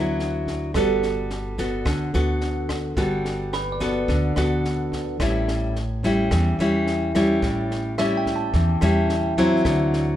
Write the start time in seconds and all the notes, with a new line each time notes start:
Already playing: D2 D3 F#3 B3 E4
0.19 snare
0.47 kick, snare
0.74 G1 G3 B3 F#4 A4, kick, cross-stick, snare
1.03 snare
1.30 snare
1.58 B3 F#4 A4, kick, snare
1.85 D2 D3, kick, cross-stick, snare
2.14 D2 B3 F#4 A4, snare
2.41 snare
2.69 kick, cross-stick, snare
2.97 G1 G3 B3 F#4 A4, kick, snare
3.25 snare
3.53 B4, cross-stick, snare
3.72 D5
3.80 B3 F#4 A4, kick, snare
4.08 D2 D3, kick, snare
4.36 D2 B3 F#4 A4, cross-stick, snare
4.65 snare
4.92 kick, snare
5.20 A1 A2 G3 C#4 E4, kick, cross-stick, snare
5.48 snare
5.76 snare
6.03 G3 C#4 E4, kick, snare
6.31 E2 E3, kick, cross-stick, snare
6.59 E2 G3 C#4 E4, snare
6.87 snare
7.15 G3 C#4 E4, kick, cross-stick, snare
7.42 A1 A2, kick, snare
7.71 snare
7.98 G3 C#4 E4 E5, cross-stick, snare
8.17 G5
8.26 kick, snare
8.36 A5
8.53 E2 E3, kick, snare
8.81 E2 G3 C#4 E4, cross-stick, snare
9.09 snare
9.37 F#3 C4 E4, kick, snare
9.65 D2 D3, kick, cross-stick, snare
9.93 snare